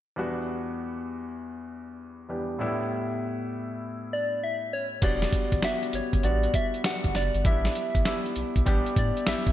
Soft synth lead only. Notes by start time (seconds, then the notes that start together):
4.13 D5
4.44 E5
4.73 C#5
5.04 D5
5.65 E5
5.95 C#5
6.25 D5
6.55 E5
6.86 F#5
7.16 D5
7.47 E5
8.98 D5
9.28 E5